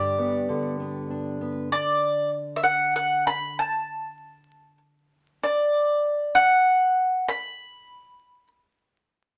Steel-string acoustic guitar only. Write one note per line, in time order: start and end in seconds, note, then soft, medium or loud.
0.00 1.68 G2 medium
0.00 0.47 D3 soft
0.00 1.10 D4 soft
0.00 1.69 G4 medium
0.18 0.79 B3 soft
0.49 3.57 D3 soft
0.80 1.40 B3 soft
1.10 1.68 D4 soft
1.41 1.68 B3 soft